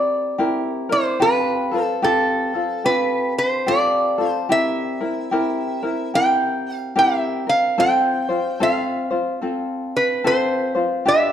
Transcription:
Already playing: ukulele C4 E4 G4 A#4, resonator guitar played with a steel bar D5
0.38 ukulele C4 E4 G4 A#4
0.89 ukulele C4 E4 A#4, resonator guitar played with a steel bar C5
1.20 ukulele C4 F4 G4 A4, resonator guitar played with a steel bar B4
1.72 ukulele C4 F4 A4
1.83 resonator guitar played with a steel bar A4
2.02 ukulele C4 F4 G4 A4, resonator guitar played with a steel bar A4
2.54 ukulele C4 F4 A4
2.84 ukulele C4 F4 G4 A4, resonator guitar played with a steel bar B4
3.38 resonator guitar played with a steel bar C5
3.66 ukulele C4 F4 G4 A4, resonator guitar played with a steel bar D5
4.18 ukulele C4 F4 A4
4.29 resonator guitar played with a steel bar C5
4.49 ukulele C4 E4 G4 A#4, resonator guitar played with a steel bar E5
5.01 ukulele C4 E4 A#4
5.31 ukulele C4 E4 G4 A#4
5.83 ukulele C4 E4 A#4
6.14 ukulele C4 E4 G4 A#4, resonator guitar played with a steel bar G5
6.76 resonator guitar played with a steel bar F5
6.96 ukulele C4 E4 G4 A#4, resonator guitar played with a steel bar E5
7.47 ukulele C4 A#4, resonator guitar played with a steel bar F5
7.78 ukulele C4 F4 A4 C5, resonator guitar played with a steel bar G5
8.29 ukulele C4 F4 C5
8.60 ukulele C4 F4 A4 C5, resonator guitar played with a steel bar F5
9.11 ukulele C4 F4 C5
9.42 ukulele C4 F4 A4
9.97 resonator guitar played with a steel bar B4
10.24 ukulele C4 F4 A4 C5, resonator guitar played with a steel bar C5
10.75 ukulele C4 F4 C5
11.06 ukulele D4 F4 G4 B4, resonator guitar played with a steel bar E5

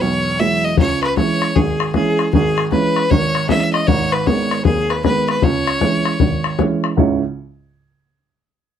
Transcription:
Already playing: upright piano E1
0.00 upright piano B1, fiddle C#5
0.39 upright piano E3 F#3 G#3, fiddle E5
0.64 fiddle D#5
0.77 upright piano C#2, fiddle C#5, bodhran
1.03 fiddle B4, bodhran
1.17 upright piano E3 G#3 C#4, fiddle C#5, bodhran
1.42 bodhran
1.56 upright piano G#1, fiddle G#4, bodhran
1.68 bodhran
1.80 bodhran
1.94 upright piano E3 G#3 C#4, fiddle G#4, bodhran
2.19 bodhran
2.33 upright piano G#1, fiddle G#4, bodhran
2.58 bodhran
2.72 upright piano E3 G#3 C#4, fiddle B4, bodhran
2.96 bodhran
3.10 upright piano G#1, fiddle C#5, bodhran
3.23 bodhran
3.35 bodhran
3.49 upright piano E3 G#3 C#4, fiddle E5, bodhran
3.73 fiddle D#5, bodhran
3.87 upright piano G#1 G#2, fiddle C#5, bodhran
4.12 fiddle B4, bodhran
4.26 upright piano D#3 G#3 B3, fiddle C#5, bodhran
4.51 bodhran
4.65 upright piano D#2, fiddle G#4, bodhran
4.78 bodhran
4.90 fiddle B4, bodhran
5.04 upright piano D#3 G#3 B3, fiddle B4, bodhran
5.29 fiddle B4, bodhran
5.42 upright piano C#2, fiddle C#5, bodhran
5.67 bodhran
5.81 upright piano E3 G#3 C#4, bodhran
6.05 bodhran
6.20 upright piano G#1, bodhran
6.32 bodhran
6.44 bodhran
6.59 upright piano E3 G#3 C#4, bodhran
6.84 bodhran
6.97 upright piano C#2 G#2 C#3 G#3 E4 C#5, bodhran

